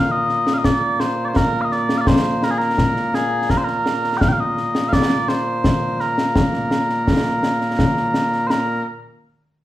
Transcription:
0.00 8.83 A#2 medium
0.00 8.83 A#3 medium
0.04 0.11 F5 medium
0.11 0.54 D#5 loud
0.29 snare soft
0.47 snare medium
0.54 0.58 F5 medium
0.58 0.65 D#5 medium
0.64 1.00 D5 medium
0.64 concert bass drum medium
0.64 snare loud
1.00 1.25 C5 medium
1.00 snare medium
1.25 1.36 C5 medium
1.25 1.29 D5 medium
1.36 1.61 A#4 loud
1.36 concert bass drum medium
1.36 snare medium
1.61 1.72 D#5 medium
1.61 1.65 F5 medium
1.72 1.98 D5 medium
1.72 snare soft
1.89 snare medium
1.98 2.08 D5 medium
1.98 2.01 F5 medium
2.07 2.44 C5 medium
2.07 concert bass drum medium
2.07 snare medium
2.43 2.51 A#4 loud
2.43 snare medium
2.51 2.58 G#4 medium
2.58 3.15 A#4 loud
2.58 snare soft
2.78 concert bass drum medium
2.78 snare medium
2.96 snare soft
3.14 3.51 G#4 medium
3.14 snare medium
3.50 3.57 A#4 medium
3.50 concert bass drum soft
3.50 snare medium
3.57 3.64 C5 medium
3.64 4.17 A#4 loud
3.64 snare soft
3.86 snare medium
4.04 snare soft
4.17 4.21 G5 medium
4.17 concert bass drum medium
4.17 snare medium
4.21 4.29 F5 loud
4.29 4.33 G5 medium
4.33 4.40 F5 medium
4.40 4.89 D#5 medium
4.57 snare soft
4.75 snare medium
4.89 4.93 F5 medium
4.89 concert bass drum medium
4.89 snare loud
4.93 5.29 D5 medium
5.28 6.00 C5 loud
5.28 snare medium
5.64 concert bass drum medium
5.64 snare medium
6.00 8.47 A#4 medium
6.00 snare soft
6.18 snare medium
6.36 concert bass drum medium
6.36 snare loud
6.53 snare soft
6.71 snare medium
6.89 snare soft
7.07 concert bass drum medium
7.07 snare medium
7.25 snare soft
7.43 snare medium
7.61 snare soft
7.79 concert bass drum medium
7.79 snare loud
7.97 snare soft
8.14 snare medium
8.32 snare soft
8.47 8.83 A#4 medium
8.47 8.50 C5 medium
8.47 snare medium

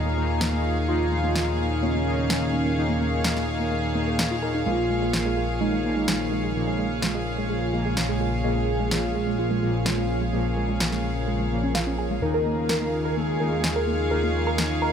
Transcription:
0.00 4.64 D#2 medium
0.00 4.71 A#2 medium
0.00 0.15 D#3 medium
0.00 0.15 A#3 medium
0.00 0.15 D#4 loud
0.00 4.62 F4 medium
0.00 12.21 G#4 medium
0.00 12.18 A#4 medium
0.00 12.22 C#5 medium
0.00 4.62 D#5 medium
0.00 12.22 F5 medium
0.00 4.62 A#5 medium
0.06 0.16 A#3 medium
0.17 0.85 D#3 medium
0.17 0.27 A#3 medium
0.17 0.85 A#3 medium
0.17 0.85 D#4 medium
0.41 0.52 A#3 medium
0.41 snare loud
0.53 0.62 A#3 medium
0.77 0.87 A#3 medium
0.88 2.04 D#3 medium
0.88 0.97 A#3 medium
0.88 2.04 A#3 medium
0.88 2.04 D#4 loud
0.88 1.74 F4 loud
1.12 1.23 A#3 medium
1.24 1.33 A#3 medium
1.35 snare loud
1.48 1.58 A#3 medium
1.59 1.68 A#3 medium
1.83 1.94 A#3 medium
1.83 3.15 C#4 loud
1.95 2.04 A#3 medium
2.06 2.74 D#3 medium
2.06 2.74 A#3 medium
2.06 2.74 D#4 medium
2.18 2.29 A#3 medium
2.30 2.39 A#3 medium
2.30 snare loud
2.54 2.65 A#3 medium
2.66 2.74 A#3 medium
2.77 3.93 D#3 medium
2.77 3.93 A#3 medium
2.77 3.93 D#4 medium
2.89 3.00 A#3 medium
3.01 3.10 A#3 medium
3.24 3.35 A#3 medium
3.24 snare loud
3.37 3.45 A#3 medium
3.37 snare soft
3.60 3.71 A#3 medium
3.72 3.81 A#3 medium
3.95 4.40 D#3 medium
3.95 4.07 A#3 medium
3.95 4.40 A#3 medium
3.95 4.40 D#4 medium
4.07 4.13 A#4 medium
4.19 snare loud
4.31 4.36 F4 medium
4.43 4.60 D#3 medium
4.43 4.60 A#3 medium
4.43 4.60 D#4 medium
4.43 4.52 A#4 medium
4.55 4.63 D#4 medium
4.66 12.20 A#1 medium
4.66 5.82 A#2 medium
4.66 14.93 C#3 medium
4.66 5.82 F3 medium
4.66 4.75 G#3 medium
4.66 5.82 A#3 loud
4.66 12.18 F4 medium
4.66 5.51 F4 loud
4.66 12.18 C#5 medium
4.66 12.18 G#5 medium
4.90 5.01 G#3 medium
5.02 5.11 G#3 medium
5.13 snare loud
5.26 5.36 G#3 medium
5.37 5.46 G#3 medium
5.61 5.72 G#3 medium
5.61 6.93 D#4 loud
5.73 5.82 G#3 medium
5.84 6.52 A#2 medium
5.84 6.52 F3 medium
5.84 6.52 A#3 medium
5.96 6.07 G#3 medium
6.08 6.17 G#3 medium
6.08 snare loud
6.32 6.42 G#3 medium
6.44 6.52 G#3 medium
6.55 7.71 A#2 medium
6.55 7.71 F3 medium
6.55 7.71 A#3 loud
6.67 6.78 G#3 medium
6.79 6.88 G#3 medium
7.02 7.13 G#3 medium
7.02 snare loud
7.15 7.23 G#3 medium
7.38 7.48 G#3 medium
7.50 7.59 G#3 medium
7.73 8.41 A#2 medium
7.73 8.41 F3 medium
7.73 7.84 G#3 medium
7.73 8.41 A#3 medium
7.85 7.94 G#3 medium
7.97 snare loud
8.09 8.19 G#3 medium
8.21 8.30 G#3 medium
8.44 9.59 A#2 medium
8.44 9.60 F3 medium
8.44 8.55 G#3 medium
8.44 9.59 A#3 medium
8.44 9.29 G#4 loud
8.56 8.65 G#3 medium
8.80 8.90 G#3 medium
8.91 9.01 G#3 medium
8.91 snare loud
9.15 9.26 G#3 medium
9.27 9.36 G#3 medium
9.39 10.71 F4 loud
9.51 9.61 G#3 medium
9.62 10.30 A#2 medium
9.62 10.30 F3 medium
9.62 9.71 G#3 medium
9.62 10.30 A#3 medium
9.86 9.97 G#3 medium
9.86 snare loud
9.98 10.07 G#3 medium
10.22 10.32 G#3 medium
10.33 11.48 A#2 medium
10.33 11.48 F3 medium
10.33 10.42 G#3 medium
10.33 11.48 A#3 medium
10.57 10.68 G#3 medium
10.69 10.78 G#3 medium
10.80 snare loud
10.92 11.03 G#3 medium
10.92 snare soft
11.04 11.13 G#3 medium
11.28 11.39 G#3 medium
11.40 11.49 G#3 medium
11.51 12.19 A#2 medium
11.51 12.19 F3 medium
11.51 12.19 A#3 medium
11.63 11.72 C#4 medium
11.75 11.80 F4 loud
11.75 snare loud
11.87 11.96 C#4 medium
11.98 12.08 G#4 medium
12.11 12.16 G#3 medium
12.22 14.93 D#2 medium
12.22 13.37 D#3 medium
12.22 13.37 A#3 medium
12.22 13.37 D#4 medium
12.22 14.93 F4 medium
12.22 14.93 G#4 medium
12.22 14.93 A#4 medium
12.22 13.18 A#4 loud
12.22 14.93 D#5 medium
12.22 14.09 A#5 medium
12.34 12.45 A#4 loud
12.46 12.55 A#3 medium
12.56 14.93 F5 medium
12.69 12.81 A#4 loud
12.69 snare loud
12.81 12.90 A#3 medium
12.89 14.93 C#5 medium
13.05 13.16 A#4 medium
13.17 13.26 A#3 medium
13.17 14.49 G#4 loud
13.40 14.08 D#3 medium
13.40 14.08 A#3 medium
13.40 14.08 D#4 medium
13.40 13.52 A#4 loud
13.52 13.61 A#3 medium
13.64 snare loud
13.76 13.87 A#4 loud
13.87 13.97 A#3 medium
14.11 14.93 D#3 medium
14.11 14.93 A#3 medium
14.11 14.93 D#4 loud
14.11 14.23 A#4 loud
14.11 14.93 G#5 medium
14.23 14.32 A#3 medium
14.47 14.58 A#4 loud
14.58 14.68 A#3 medium
14.58 snare loud
14.82 14.93 A#4 loud

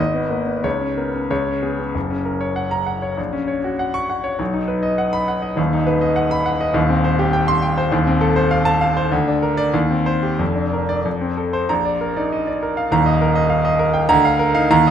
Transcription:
0.00 0.62 G#1 medium
0.00 0.51 D#5 medium
0.14 0.41 B3 medium
0.30 0.47 A#3 medium
0.30 0.64 B4 medium
0.47 0.64 B3 medium
0.64 1.28 C#2 medium
0.64 1.17 C#5 medium
0.81 1.07 C#4 medium
0.97 1.14 B3 soft
0.97 1.30 A#4 medium
1.14 1.30 C#4 medium
1.30 1.93 C#2 medium
1.30 1.83 C#5 medium
1.47 1.73 C#4 medium
1.62 1.79 B3 soft
1.62 1.95 G#4 medium
1.79 1.95 C#4 medium
1.95 3.14 F#1 medium
2.10 2.35 C#4 medium
2.25 2.50 A#4 medium
2.40 2.65 C#5 medium
2.56 2.81 F#5 medium
2.71 2.96 A#5 medium
2.86 3.11 F#5 medium
3.02 3.18 C#5 medium
3.17 4.36 A#1 medium
3.33 3.58 C#4 medium
3.48 3.73 C#5 medium
3.64 3.89 F#4 medium
3.79 4.04 F#5 medium
3.94 4.18 C#6 loud
4.10 4.34 F#5 medium
4.24 4.39 C#5 medium
4.39 5.54 B1 medium
4.53 4.78 D#4 medium
4.68 4.92 B4 medium
4.83 5.07 D#5 medium
4.98 5.22 F#5 medium
5.13 5.37 B5 loud
5.28 5.52 F#5 medium
5.42 5.58 D#5 medium
5.56 6.71 D#1 medium
5.56 6.71 D#2 medium
5.73 5.96 D#4 medium
5.87 6.11 B4 medium
6.01 6.25 D#5 medium
6.16 6.40 F#5 medium
6.31 6.55 B5 loud
6.46 6.69 F#5 medium
6.61 6.75 D#5 medium
6.74 7.88 D#1 loud
6.74 7.88 D#2 loud
6.89 7.13 C4 medium
7.04 7.28 C5 medium
7.19 7.43 G4 medium
7.33 7.57 G5 loud
7.48 7.72 C6 loud
7.62 7.86 G5 loud
7.77 7.92 C5 medium
7.91 9.08 D#1 loud
7.91 9.08 D#2 loud
8.07 8.31 C4 medium
8.21 8.45 A4 medium
8.36 8.60 C5 medium
8.51 8.75 F5 loud
8.65 8.90 A5 loud
8.81 9.06 F5 medium
8.97 9.12 C5 medium
9.12 9.72 D2 loud
9.28 9.52 D4 medium
9.43 9.68 A#4 medium
9.57 9.74 D5 loud
9.74 10.38 D#2 loud
9.90 10.17 C4 medium
10.06 10.33 C5 loud
10.23 10.40 G4 medium
10.38 11.03 F1 medium
10.38 11.03 F2 medium
10.56 10.82 D4 medium
10.73 10.99 A#4 medium
10.89 11.05 D5 medium
11.05 11.68 F2 medium
11.21 11.48 C4 medium
11.38 11.64 A4 medium
11.53 11.70 C5 medium
11.69 12.88 A#1 medium
11.69 11.94 A#5 medium
11.85 12.10 D5 medium
12.01 12.26 A#4 medium
12.16 12.32 D#4 medium
12.16 12.41 D5 medium
12.32 12.47 D#5 medium
12.47 12.71 D5 medium
12.63 12.86 A#4 medium
12.77 12.92 F5 medium
12.91 14.06 D#1 medium
12.91 14.07 D#2 loud
12.91 13.15 A#5 loud
13.06 13.30 D#5 medium
13.21 13.45 A#4 medium
13.35 13.59 D#5 medium
13.50 13.65 F5 medium
13.65 13.89 D#5 medium
13.79 14.04 A#4 medium
13.94 14.09 G5 medium
14.09 14.69 D2 loud
14.09 14.34 A#5 loud
14.25 14.49 F5 loud
14.39 14.65 A#4 loud
14.55 14.71 D#4 medium
14.55 14.71 F5 loud
14.71 14.90 D#2 loud
14.71 14.90 A#5 loud
14.87 14.90 D#5 loud

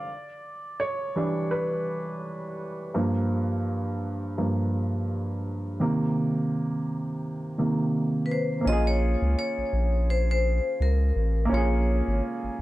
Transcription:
0.00 0.84 D5 medium
0.80 1.47 C#5 medium
1.16 1.65 E3 medium
1.16 1.65 G3 medium
1.16 1.65 D4 medium
1.51 2.54 B4 medium
2.94 4.36 G2 medium
2.94 4.36 F3 medium
2.94 4.37 A#3 medium
4.38 4.69 G2 soft
4.38 4.69 F3 soft
4.38 4.70 A#3 soft
5.80 6.83 C3 medium
5.80 6.83 D#3 soft
5.80 6.83 A#3 medium
7.58 7.90 C3 soft
7.58 7.91 D#3 soft
7.58 7.91 A#3 soft
8.26 8.31 B4 medium
8.32 8.64 C5 medium
8.61 11.44 A#3 medium
8.61 11.47 C#4 medium
8.66 9.16 A#1 loud
8.66 11.49 F4 medium
8.66 8.85 D#5 loud
8.73 11.51 G#4 medium
8.87 9.38 C#5 loud
9.22 9.36 C#2 medium
9.39 10.05 C#5 loud
9.58 9.64 A#1 medium
9.73 10.60 A#1 medium
10.10 10.30 C5 medium
10.31 10.82 C5 medium
10.80 11.12 C#2 loud
10.80 11.54 A#4 medium
11.16 11.48 A1 medium
11.45 12.62 A#3 medium
11.45 12.62 C#4 medium
11.52 12.02 A#1 loud
11.52 12.62 F4 medium
11.52 12.20 C#5 medium
11.57 12.62 G#4 medium
12.08 12.21 G#1 medium
12.44 12.50 G#1 soft

